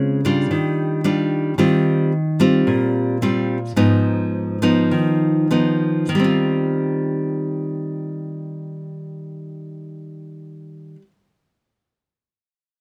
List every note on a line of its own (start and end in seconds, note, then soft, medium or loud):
0.00 0.48 C#3 medium
0.00 0.20 G#3 medium
0.00 0.19 C4 medium
0.00 0.20 F4 medium
0.25 1.00 G3 medium
0.25 1.01 D4 medium
0.25 1.00 F4 medium
0.51 1.55 D#3 medium
1.04 1.53 G3 medium
1.04 1.54 D4 soft
1.04 1.54 F4 medium
1.58 2.63 D#3 medium
1.58 2.11 G3 medium
1.58 2.12 C4 soft
1.58 2.12 F4 medium
2.40 3.17 G3 medium
2.40 3.17 C4 soft
2.40 3.17 F4 medium
2.67 3.74 A#2 medium
3.22 3.57 G3 medium
3.22 3.57 C4 soft
3.22 3.57 F4 medium
3.76 4.89 G#2 medium
3.76 4.58 F3 soft
3.76 4.58 B3 medium
3.76 4.58 D#4 medium
4.62 5.47 F3 medium
4.62 5.47 B3 medium
4.62 5.47 D#4 medium
4.91 6.08 D#3 medium
5.51 6.08 F3 soft
5.51 6.08 B3 soft
5.51 6.09 D#4 medium
6.09 10.95 D#3 medium
6.15 11.01 G3 medium
6.19 11.06 C4 medium
6.24 11.11 F4 medium